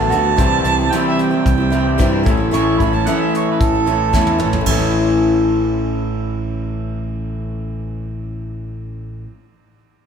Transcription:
0.00 0.35 D3 medium
0.00 0.12 A3 medium
0.00 0.11 B3 medium
0.00 0.12 F#4 medium
0.00 0.93 A5 loud
0.10 0.37 D2 medium
0.10 0.24 D3 soft
0.10 0.24 A3 medium
0.10 0.24 B3 medium
0.10 0.22 F#4 medium
0.10 closed hi-hat medium
0.23 0.38 A3 soft
0.23 0.38 B3 soft
0.23 0.37 F#4 soft
0.37 0.63 C2 medium
0.37 0.64 C3 medium
0.37 0.63 E3 medium
0.37 0.65 G3 medium
0.37 0.64 C4 medium
0.37 0.65 E4 medium
0.37 kick loud
0.37 closed hi-hat medium
0.64 0.90 C2 medium
0.64 0.78 E3 medium
0.64 0.79 G3 medium
0.64 0.79 C4 medium
0.64 0.78 E4 medium
0.64 closed hi-hat medium
0.79 0.92 G3 soft
0.79 0.93 C4 soft
0.79 0.92 E4 medium
0.92 1.32 C3 medium
0.92 1.33 E3 medium
0.92 1.32 G3 medium
0.92 1.31 C4 medium
0.92 1.30 E4 medium
0.92 1.04 G5 medium
0.92 closed hi-hat medium
1.08 1.19 E5 medium
1.19 2.24 G5 medium
1.19 closed hi-hat medium
1.31 1.60 G3 soft
1.31 1.59 C4 soft
1.31 1.56 E4 soft
1.46 1.97 C2 medium
1.46 kick medium
1.46 closed hi-hat medium
1.58 1.70 G3 soft
1.58 1.71 C4 soft
1.58 1.72 E4 soft
1.70 1.98 E3 medium
1.70 1.98 G3 medium
1.70 1.99 C4 medium
1.70 1.99 E4 medium
1.70 closed hi-hat medium
1.98 2.25 G2 medium
1.98 2.25 C3 medium
1.98 2.22 E3 medium
1.98 2.24 G3 medium
1.98 2.26 C4 medium
1.98 2.25 E4 medium
1.98 kick medium
1.98 closed hi-hat medium
2.23 2.52 A1 medium
2.23 2.38 E3 medium
2.23 2.39 A3 medium
2.23 2.37 C#4 medium
2.23 2.36 E4 medium
2.23 kick medium
2.23 closed hi-hat medium
2.28 2.50 A2 medium
2.28 2.51 E3 medium
2.37 2.51 A3 soft
2.37 2.52 C#4 soft
2.37 2.52 E4 soft
2.51 2.78 A1 medium
2.51 2.79 A2 medium
2.51 2.79 E3 medium
2.51 2.80 A3 medium
2.51 2.80 C#4 medium
2.51 2.80 E4 medium
2.51 2.81 C#6 medium
2.51 closed hi-hat medium
2.78 3.05 A1 medium
2.78 2.93 E3 soft
2.78 2.94 A3 medium
2.78 3.07 E4 medium
2.78 2.96 B5 medium
2.78 kick medium
2.78 closed hi-hat medium
2.82 2.93 C#4 medium
2.82 2.92 E4 medium
2.93 3.07 A3 soft
2.93 3.07 C#4 soft
2.93 3.06 E4 soft
2.93 3.09 A5 medium
3.07 3.74 A2 medium
3.07 3.74 E3 medium
3.07 3.75 A3 medium
3.07 3.74 C#4 medium
3.07 3.71 E4 medium
3.07 3.22 F#5 medium
3.07 closed hi-hat medium
3.21 3.33 E5 medium
3.35 3.47 C#5 medium
3.35 closed hi-hat medium
3.51 3.63 B4 medium
3.61 4.11 A1 medium
3.61 4.65 A4 medium
3.61 kick medium
3.61 closed hi-hat medium
3.72 3.85 A3 soft
3.72 3.86 C#4 soft
3.72 3.86 E4 soft
3.86 4.12 E3 medium
3.86 4.12 A3 soft
3.86 4.13 C#4 medium
3.86 4.13 E4 medium
3.86 closed hi-hat medium
4.13 4.39 E2 medium
4.13 4.40 A2 medium
4.13 4.37 E3 medium
4.13 4.38 A3 medium
4.13 4.39 C#4 medium
4.13 4.40 E4 medium
4.13 kick medium
4.13 snare soft
4.27 high tom medium
4.38 4.66 A1 medium
4.38 4.53 E3 medium
4.38 4.53 A3 medium
4.38 4.53 C#4 medium
4.38 4.52 E4 medium
4.38 mid tom medium
4.43 4.66 A3 soft
4.53 4.68 A3 soft
4.53 4.68 C#4 soft
4.53 4.67 E4 soft
4.53 floor tom medium
4.61 9.24 A2 medium
4.66 9.25 A1 medium
4.66 9.29 E3 medium
4.66 9.29 A3 medium
4.66 9.31 C#4 loud
4.66 9.32 E4 medium
4.66 kick medium
4.66 ride medium
4.71 9.34 A3 medium
4.71 9.37 C#4 medium
4.79 9.42 E4 medium

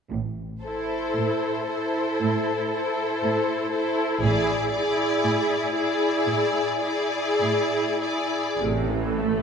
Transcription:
0.11 1.03 A1 soft
0.11 1.03 A2 soft
0.64 1.67 E4 soft
0.64 1.66 A4 soft
0.64 1.66 C5 soft
1.17 2.06 A2 soft
1.68 2.70 E4 soft
1.68 2.69 A4 soft
1.68 2.70 C5 soft
2.21 3.08 A2 soft
2.70 3.71 E4 soft
2.70 3.70 A4 soft
2.70 3.70 C5 soft
3.22 4.08 A2 soft
3.71 4.22 E4 soft
3.71 4.21 A4 soft
3.71 4.22 C5 soft
4.20 5.09 A1 soft
4.20 5.09 A2 soft
4.20 4.72 E4 soft
4.20 4.70 G#4 soft
4.20 4.70 D5 soft
4.71 5.73 E4 soft
4.71 5.73 G#4 soft
4.71 5.72 D5 soft
5.23 6.13 A2 soft
5.75 6.80 E4 soft
5.75 6.80 G#4 soft
5.75 6.80 D5 soft
6.28 7.24 A2 soft
6.81 7.99 E4 soft
6.81 7.98 G#4 soft
6.81 7.98 D5 soft
7.40 8.45 A2 soft
8.01 8.59 E4 soft
8.01 8.59 G#4 soft
8.01 8.59 D5 soft
8.59 9.42 A1 soft
8.59 9.42 A2 soft
8.59 8.86 C3 soft
8.59 9.42 A4 soft
8.87 9.14 E3 soft
9.14 9.41 A3 soft

